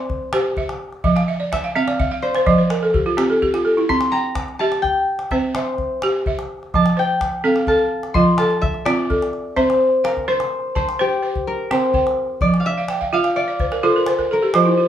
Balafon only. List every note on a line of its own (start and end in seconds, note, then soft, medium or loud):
0.00 0.32 C5 medium
0.00 0.56 E5 medium
0.33 0.81 G4 medium
0.33 1.04 C5 medium
0.58 1.03 E5 medium
1.04 1.52 F3 medium
1.04 1.26 E5 medium
1.16 1.38 F5 medium
1.28 1.50 E5 medium
1.40 1.62 D5 medium
1.52 1.74 E5 medium
1.64 1.86 F5 medium
1.75 2.23 C4 medium
1.75 1.97 E5 medium
1.87 2.09 D5 medium
1.99 2.21 E5 medium
2.11 2.33 F5 medium
2.23 2.45 D5 medium
2.35 2.57 C5 medium
2.46 2.94 F3 medium
2.46 2.68 D5 medium
2.58 2.80 C5 medium
2.70 2.92 A#4 medium
2.83 3.04 A4 medium
2.94 3.16 G4 medium
3.06 3.28 F4 medium
3.17 3.65 C4 medium
3.17 3.39 G4 medium
3.30 3.52 A4 medium
3.42 3.64 G4 medium
3.54 3.75 F4 medium
3.65 3.87 A4 medium
3.77 3.99 E4 medium
3.89 4.36 C4 medium
4.13 4.84 G5 medium
4.61 5.08 G4 medium
4.61 5.31 E5 medium
5.32 5.78 C4 medium
5.32 6.02 C5 medium
5.55 6.26 E5 medium
6.03 6.50 G4 medium
6.27 6.97 E5 medium
6.74 7.21 F3 medium
6.97 7.68 C5 medium
7.44 7.91 C4 medium
7.44 7.67 A4 medium
7.68 8.38 A4 medium
8.15 8.62 F3 medium
8.15 8.85 F4 medium
8.39 9.09 A4 medium
8.86 9.33 C4 medium
8.86 9.57 F4 medium
9.10 9.81 A4 medium
9.56 10.04 C4 medium
9.56 10.28 E5 medium
10.04 10.75 F5 medium
10.28 10.75 C5 medium
10.75 11.46 A5 medium
10.99 11.21 C5 medium
11.22 11.93 C5 medium
11.71 12.18 C4 medium
11.71 11.93 G5 medium
11.94 12.65 G5 medium
12.42 12.88 F3 medium
12.78 12.99 F5 medium
12.90 13.11 G5 medium
13.01 13.22 F5 medium
13.13 13.59 F4 medium
13.13 13.34 E5 medium
13.24 13.46 F5 medium
13.36 13.58 E5 medium
13.48 13.69 D5 medium
13.60 13.82 C5 medium
13.72 13.93 A#4 medium
13.83 14.30 F4 medium
13.83 14.05 A4 medium
13.96 14.17 A#4 medium
14.07 14.29 C5 medium
14.19 14.40 A#4 medium
14.31 14.52 A4 medium
14.42 14.64 G4 medium
14.54 14.88 F3 medium
14.54 14.76 F4 medium
14.65 14.87 E4 medium
14.78 14.88 F4 medium